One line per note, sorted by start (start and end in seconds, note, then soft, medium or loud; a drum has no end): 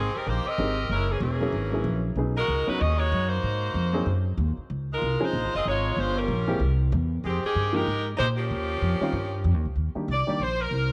0.00 0.13 G#1 medium
0.00 0.13 D#3 medium
0.00 0.13 A#3 medium
0.00 0.13 C4 medium
0.00 0.13 G#4 medium
0.15 0.27 G3 medium
0.15 0.27 C4 medium
0.15 0.27 D#4 medium
0.15 0.27 A#4 medium
0.15 muted upright bass stroke soft
0.27 0.45 A#1 medium
0.27 0.47 A#3 medium
0.27 0.47 D#4 medium
0.27 0.46 G4 medium
0.27 0.47 C5 medium
0.45 0.91 C4 loud
0.45 0.91 G4 loud
0.45 0.90 A#4 loud
0.45 0.91 D#5 loud
0.45 muted upright bass stroke soft
0.58 0.89 G#1 medium
0.58 0.76 G#3 medium
0.58 0.76 C4 soft
0.58 0.76 D#4 medium
0.58 0.76 G4 medium
0.58 0.77 A#4 medium
0.89 1.20 F#1 medium
0.89 1.09 G#3 medium
0.89 1.08 C#4 medium
0.89 1.09 E4 medium
0.89 1.09 A#4 loud
1.10 1.21 E3 medium
1.10 1.21 A#3 medium
1.10 1.21 C#4 medium
1.10 1.20 G#4 medium
1.20 1.52 E1 medium
1.20 2.00 E3 medium
1.20 2.01 A#3 medium
1.20 2.01 C#4 medium
1.20 2.00 G#4 medium
1.40 1.52 F#3 medium
1.40 1.52 A#3 medium
1.40 1.52 C#4 medium
1.40 1.53 E4 medium
1.40 1.53 G#4 medium
1.52 1.84 G#1 medium
1.72 2.14 F#3 medium
1.72 2.14 A#3 medium
1.72 2.14 C#4 medium
1.72 2.15 E4 soft
1.72 2.15 G#4 medium
1.84 2.15 A#1 medium
2.16 2.47 B1 medium
2.16 2.34 F#3 medium
2.16 2.34 B3 medium
2.16 2.35 C#4 medium
2.16 2.35 D#4 medium
2.16 2.35 G#4 medium
2.37 2.66 G#3 medium
2.37 2.66 D#4 medium
2.37 2.66 F#4 medium
2.37 2.66 A#4 loud
2.48 2.66 C#2 medium
2.67 2.78 F#3 medium
2.67 2.80 G#3 medium
2.67 2.79 B3 medium
2.67 2.79 C#4 medium
2.67 2.79 D#4 medium
2.67 2.81 D#4 medium
2.67 2.79 F#4 medium
2.67 2.80 B4 loud
2.67 muted upright bass stroke soft
2.80 3.11 D#2 medium
2.80 2.99 C#4 medium
2.80 2.96 F#4 medium
2.80 2.99 G#4 medium
2.80 2.99 D#5 loud
2.98 3.30 G#3 medium
2.98 3.28 D#4 medium
2.98 3.28 F#4 medium
2.98 3.30 C#5 loud
3.12 3.42 F#2 loud
3.29 4.25 A#3 medium
3.29 4.25 D#4 medium
3.29 4.25 F#4 medium
3.29 4.25 C5 medium
3.43 3.74 G#2 medium
3.74 4.05 F2 medium
3.93 4.05 F#3 medium
3.93 4.05 A#3 medium
3.93 4.05 C4 medium
3.93 4.05 D#4 medium
3.93 4.06 G#4 medium
4.06 4.37 F#2 medium
4.38 4.56 D#2 medium
4.57 muted upright bass stroke soft
4.70 5.01 C#2 medium
4.93 5.21 G#3 medium
4.93 5.21 D#4 medium
4.93 5.21 F4 medium
4.93 5.21 A#4 loud
5.02 5.20 C2 medium
5.20 5.32 F3 medium
5.20 5.53 G#3 medium
5.20 5.32 C4 medium
5.20 5.32 C#4 medium
5.20 5.32 D#4 medium
5.20 5.54 D#4 medium
5.20 5.54 F4 medium
5.20 5.32 G#4 medium
5.20 5.54 C5 loud
5.20 muted upright bass stroke soft
5.33 5.44 A#1 medium
5.44 5.55 G#1 medium
5.55 5.64 F1 medium
5.55 5.65 C4 medium
5.55 5.66 F4 medium
5.55 5.65 G#4 loud
5.55 5.66 D#5 loud
5.65 5.96 G#1 medium
5.65 5.96 G#3 medium
5.65 5.96 D#4 medium
5.65 5.96 F4 medium
5.65 5.96 C#5 loud
5.97 6.27 G1 medium
5.97 6.16 G#3 medium
5.97 6.17 C#4 medium
5.97 6.17 F4 medium
5.97 6.17 C5 loud
6.18 6.80 G3 medium
6.18 6.61 C#4 medium
6.18 6.61 F4 medium
6.18 6.80 A#4 medium
6.28 6.59 A#1 medium
6.47 6.59 E3 medium
6.47 6.58 G#3 medium
6.47 6.59 A#3 medium
6.47 6.59 C4 medium
6.47 6.59 G4 medium
6.60 6.90 C2 medium
6.92 7.22 E2 loud
7.24 7.41 F2 medium
7.24 7.42 D#3 medium
7.24 7.42 G#3 medium
7.24 7.42 C4 medium
7.24 7.42 G4 medium
7.44 7.73 D#3 medium
7.44 7.73 C4 medium
7.44 7.73 G4 medium
7.44 7.73 G#4 medium
7.44 muted upright bass stroke soft
7.55 7.86 G2 medium
7.73 7.85 F3 medium
7.73 7.85 G#3 medium
7.73 8.06 G#3 medium
7.73 7.85 A#3 medium
7.73 7.86 D#4 medium
7.73 8.06 D#4 medium
7.73 8.06 G4 medium
7.73 7.85 G4 medium
7.73 8.06 A#4 loud
7.87 8.18 G#2 medium
8.17 8.49 A#2 medium
8.17 8.26 G#3 medium
8.17 8.26 D#4 medium
8.17 8.26 G4 medium
8.17 8.27 C5 loud
8.37 9.60 F3 medium
8.37 9.60 A#3 medium
8.37 9.60 C#4 medium
8.37 9.60 G4 medium
8.51 8.81 D#2 medium
8.81 8.99 F2 medium
9.00 9.12 D#3 medium
9.00 9.12 G3 medium
9.00 9.13 C4 medium
9.00 9.13 C#4 medium
9.00 9.13 F4 medium
9.00 muted upright bass stroke soft
9.13 9.44 G2 medium
9.44 9.54 F2 loud
9.54 9.65 D#2 medium
9.65 9.75 C#2 medium
9.76 9.94 D#2 medium
9.95 10.07 D#3 medium
9.95 10.07 G3 soft
9.95 10.07 A#3 soft
9.95 10.07 D4 medium
9.95 10.08 G4 medium
9.95 muted upright bass stroke soft
10.08 10.26 C2 medium
10.08 10.40 D5 medium
10.27 10.39 D#3 medium
10.27 10.39 G3 medium
10.27 10.39 A#3 medium
10.27 10.39 D4 medium
10.27 10.40 G4 medium
10.40 10.70 A#1 medium
10.40 10.60 C5 loud
10.61 10.92 A#4 loud
10.71 10.92 C2 medium